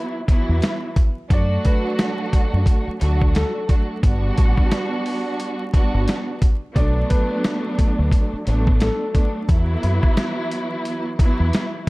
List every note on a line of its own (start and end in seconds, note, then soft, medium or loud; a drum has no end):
0.00 0.17 E3 loud
0.00 0.17 F#3 loud
0.00 0.17 B3 loud
0.00 0.17 E4 loud
0.28 0.92 E3 loud
0.28 0.92 F#3 medium
0.28 0.92 B3 medium
0.28 0.92 E4 loud
0.28 kick loud
0.28 closed hi-hat medium
0.49 0.59 E2 medium
0.62 snare loud
0.62 closed hi-hat medium
0.96 kick medium
0.96 closed hi-hat medium
1.30 1.57 F#2 loud
1.30 2.89 F#3 loud
1.30 2.89 A3 loud
1.30 2.89 D4 loud
1.30 2.90 F#4 loud
1.30 1.63 D5 loud
1.30 kick loud
1.30 closed hi-hat medium
1.65 2.16 B4 medium
1.65 kick medium
1.65 closed hi-hat medium
1.99 snare loud
1.99 closed hi-hat loud
2.33 kick medium
2.33 closed hi-hat medium
2.53 2.64 F#2 medium
2.66 kick medium
2.66 closed hi-hat medium
2.88 muted fingered electric bass stroke soft
2.99 3.43 D2 medium
2.99 3.64 F#3 loud
2.99 3.64 A3 medium
2.99 3.64 D4 medium
2.99 3.64 F#4 loud
2.99 closed hi-hat medium
3.22 kick loud
3.35 3.66 A4 medium
3.35 snare loud
3.35 closed hi-hat medium
3.67 4.00 F#3 medium
3.67 4.00 A3 medium
3.67 4.00 D4 medium
3.67 4.00 F#4 medium
3.67 kick medium
3.67 closed hi-hat medium
4.02 4.29 G1 loud
4.02 5.62 G3 loud
4.02 5.62 B3 loud
4.02 5.62 D4 loud
4.02 5.62 F#4 loud
4.02 kick loud
4.02 closed hi-hat medium
4.38 4.53 A1 medium
4.38 kick medium
4.38 closed hi-hat medium
4.58 kick medium
4.71 snare loud
4.71 closed hi-hat loud
5.06 open hi-hat medium
5.40 closed hi-hat medium
5.73 6.37 G3 medium
5.73 6.37 B3 medium
5.73 6.37 D4 medium
5.73 6.37 F#4 loud
5.73 kick loud
5.73 closed hi-hat medium
5.94 6.05 G1 medium
6.08 snare loud
6.08 closed hi-hat medium
6.42 kick medium
6.42 closed hi-hat medium
6.75 7.02 B1 loud
6.75 8.35 F#3 loud
6.75 8.35 A3 loud
6.75 8.35 B3 loud
6.75 8.35 D4 loud
6.75 7.06 D5 medium
6.75 kick loud
6.75 closed hi-hat medium
7.10 7.61 B4 medium
7.10 kick medium
7.10 closed hi-hat medium
7.44 snare loud
7.44 closed hi-hat loud
7.79 kick medium
7.79 closed hi-hat medium
7.99 8.09 D2 medium
8.12 kick loud
8.12 closed hi-hat medium
8.33 muted fingered electric bass stroke soft
8.46 8.88 A1 medium
8.46 9.10 F#3 loud
8.46 9.10 A3 medium
8.46 9.10 B3 medium
8.46 9.10 D4 loud
8.46 closed hi-hat medium
8.67 kick loud
8.80 9.12 A4 medium
8.80 snare loud
8.80 snare medium
8.80 closed hi-hat medium
9.13 9.46 F#3 medium
9.13 9.46 A3 medium
9.13 9.46 B3 medium
9.13 9.46 D4 medium
9.13 kick medium
9.13 closed hi-hat medium
9.49 9.75 E2 loud
9.49 11.08 E3 loud
9.49 11.08 F#3 loud
9.49 11.08 B3 loud
9.49 11.08 E4 loud
9.49 kick loud
9.49 closed hi-hat medium
9.83 9.98 F#2 medium
9.83 closed hi-hat medium
10.03 kick loud
10.17 snare loud
10.17 closed hi-hat loud
10.52 closed hi-hat medium
10.85 closed hi-hat medium
11.19 11.83 E3 loud
11.19 11.83 F#3 medium
11.19 11.83 B3 medium
11.19 11.83 E4 loud
11.19 kick loud
11.19 closed hi-hat medium
11.40 11.50 E2 medium
11.53 snare loud
11.53 closed hi-hat medium